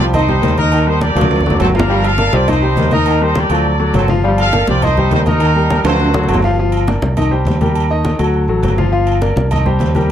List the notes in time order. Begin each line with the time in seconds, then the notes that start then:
Already playing: C2 F3
0.00 G3 G4 C5
0.13 D#3 D#4 C5 D#5, high conga, low conga, low agogo
0.28 G3 G4 C5, high conga, low conga
0.42 D#2 D#3, high conga, low timbale, low agogo
0.57 D#3 D#4 A#4 D#5, high conga, low agogo
0.72 D#3, low agogo
0.87 G3 D#4 G4 A#4 C5, high conga
1.01 G4 D5, high conga, low timbale, low agogo
1.15 D2 F3 F#3 F#4 A4, high timbale, low agogo
1.21 high conga
1.31 high timbale
1.40 low conga
1.46 F#3 F#4 A4, low timbale
1.50 low conga
1.60 G1 F#3 C4 A4, low conga, low timbale, low agogo
1.70 low conga
1.75 F3 D4 F4 A#4 F5, low timbale
1.79 low conga
1.89 F3 G3 F4 F5, high conga
2.03 A4 F5, high conga, low agogo
2.18 A#3 A#4 D5, high conga, low timbale, low agogo
2.33 C2 F3 G3 F4 G4 C5 D5, high conga
2.47 D#3 D#4 C5 D#5, high conga, low conga, low agogo
2.62 G3 G4 C5, high conga
2.76 D#2 D#3, high conga, low timbale, low agogo
2.91 D#3 D#4 A#4 D#5, high conga, low agogo
3.06 D#3, high conga, low agogo
3.20 G3 D#4 G4 A#4 C5, high conga
3.35 G4 D5, high conga, low timbale, low agogo
3.49 D2 F3 F#3 F#4 A4, low agogo
3.65 high conga
3.80 F#3 F#4 A4, high conga
3.93 G1 F#3 C4 A4, high conga, low timbale, low agogo
4.08 F3 F4 F5, high conga
4.23 F3 G3 F4 F5, high conga
4.38 A4 F5, high conga, low agogo
4.53 A#3 A#4 D5, high conga, low timbale, low agogo
4.67 C2 F3 G3 F4 G4 C5 D5, high conga
4.82 D#3 D#4 C5 D#5, high conga, low conga, low agogo
4.97 G3 G4 C5, high conga, low conga
5.11 D#2 D#3 D#4 C5, high conga, low timbale, low agogo
5.26 D#3 D#4 A#4 D#5, high conga, low agogo
5.40 D#3, high conga, low agogo
5.55 G3 G4 A#4, high conga
5.70 high conga, low timbale, low agogo
5.84 D2 F3 F#3 F#4 A4 C5, high timbale, low agogo
6.00 high conga, high timbale
6.14 F#3 F#4 A4, high conga, low timbale
6.24 F#3, high conga
6.28 G1, low timbale, low agogo
6.34 low conga
6.42 F3 F4 F5, low conga, low timbale
6.58 F3 F4 F5, high conga
6.72 high conga, low agogo
6.87 A#3 A#4 D5, high conga, low timbale, low agogo
7.02 C2, high conga
7.17 D#3 D#4 D#5, high conga, low conga, low agogo
7.31 G3 G4 C5, high conga
7.45 D#2, high conga, low timbale, low agogo
7.61 G3 G4 A#4, high conga, low agogo
7.75 high conga, low agogo
7.90 D#3 D#4 D#5, high conga
8.04 high conga, low timbale, low agogo
8.19 D2 F#3 F#4 A4, low agogo
8.34 high conga
8.48 A1 F#3 F#4 A4, high conga
8.63 G1, high conga, low timbale, low agogo
8.78 F3 F4 F5, high conga
8.92 F3 F4 F5, high conga
9.07 high conga, low agogo
9.21 A#3 A#4 D5, high conga, low timbale, low agogo
9.36 C2, high conga
9.51 D#3 D#4 D#5, high conga, low conga, low agogo
9.65 G3 G4 C5, high conga, low conga
9.79 D#2, high conga, low timbale, low agogo
9.95 G3 G4 A#4, high conga, low agogo